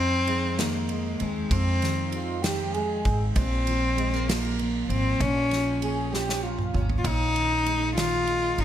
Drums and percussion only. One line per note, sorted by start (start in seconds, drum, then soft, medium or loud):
0.27 ride soft
0.59 snare loud
0.59 ride medium
0.89 ride soft
1.20 ride soft
1.51 kick loud
1.51 ride medium
1.82 snare soft
1.82 ride soft
2.12 ride soft
2.44 snare loud
2.44 ride medium
2.74 ride soft
3.05 kick medium
3.05 ride soft
3.36 kick loud
3.36 ride medium
3.67 ride medium
3.98 ride soft
4.29 snare loud
4.29 ride medium
4.59 ride soft
4.90 ride soft
5.21 kick loud
5.21 ride medium
5.51 snare soft
5.51 ride soft
5.82 ride soft
6.14 snare medium
6.29 snare medium
6.59 mid tom medium
6.75 mid tom medium
6.89 floor tom medium
7.05 kick loud
7.05 ride medium
7.36 ride medium
7.66 ride soft
7.97 snare loud
7.97 ride medium
8.27 ride soft
8.58 ride soft